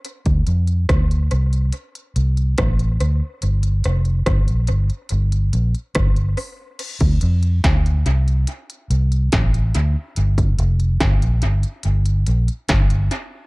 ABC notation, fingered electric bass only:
X:1
M:4/4
L:1/16
Q:1/4=71
K:Dm
V:1 name="Fingered electric bass" clef=bass
z D,, F,,2 D,,2 C,,2 z2 C,,2 A,,,2 D,, z | G,,,2 F,,,2 G,,, B,,, G,,, z G,,,2 B,,, z G,,,2 z2 | z D,, F,,2 D,,2 C,,2 z2 C,,2 A,,,2 D,, z | G,,,2 F,,,2 G,,, B,,, G,,, z G,,,2 B,,, z G,,,2 z2 |]